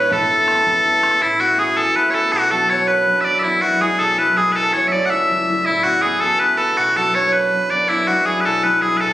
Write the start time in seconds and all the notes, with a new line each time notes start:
Already playing: E1 E2 B2 G#3 B3 D4 E4 F#4 B4 C#5 E5
0.10 A1 A2 A4, bodhran
0.29 A3 B3 C#4, bodhran
0.47 A3 B3 C#4, bodhran
0.66 E2, bodhran
0.84 A3 B3 C#4, bodhran
1.02 A3 B3 C#4, bodhran
1.20 A2 E4
1.39 A3 B3 C#4 F#4
1.58 A3 B3 C#4 G#4
1.76 E2 A4
1.95 A3 B3 C#4 B4
2.10 A3 B3 A4 C#5
2.15 C#4
2.32 B2 F#4
2.50 F#3 B3 D4 A4
2.69 F#3 B3 D4 C#5
2.87 F#2 B4
3.07 F#3 B3 D4
3.21 D5 E5
3.26 F#3 B3 D4 D5
3.39 E5
3.43 E2 E4
3.62 F#3 G#3 E4 F#4
3.81 F#3 G#3 E4 G#4
3.99 B2 A4
4.18 F#3 G#3 E4 B4
4.36 F#3 G#3 E4 G#4
4.52 F#2 A4 B4
4.57 A4
4.73 F#3 A3 E4 C#5
4.88 F#3 D5 E5
4.93 A3 E4 D5
5.05 F#5
5.10 C#2 E5
5.30 F#3 A3 E4
5.49 F#3 A3 E4
5.66 A2 E4
5.83 A3 B3 C#4 F#4
6.02 A3 B3 C#4 G#4
6.21 E2 A4
6.39 A3 B3 C#4 B4
6.57 A3 B3 C#4 A4
6.77 B2 F#4
6.96 F#3 B3 D4 A4
7.15 F#3 B3 D4 C#5
7.32 F#2 B4
7.52 F#3 B3 D4
7.70 F#3 B3 D4 D5
7.89 E2 E4
8.07 F#3 G#3 E4 F#4
8.26 F#3 G#3 E4 G#4
8.41 B4
8.45 B2 A4
8.63 F#3 G#3 E4 B4
8.82 F#3 G#3 E4 G#4
8.97 A4 B4
9.01 A2 A4